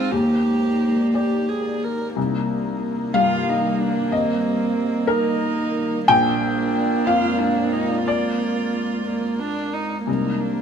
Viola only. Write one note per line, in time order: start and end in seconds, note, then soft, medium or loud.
0.00 0.13 F4 medium
0.11 1.07 G4 medium
1.14 1.50 G4 medium
1.49 1.85 G#4 soft
1.84 2.15 A#4 medium
2.16 6.04 A#3 medium
6.07 8.95 A#3 medium
9.06 9.41 A#3 medium
9.39 9.75 D4 medium
9.73 10.07 D#4 medium
10.07 10.62 A#3 soft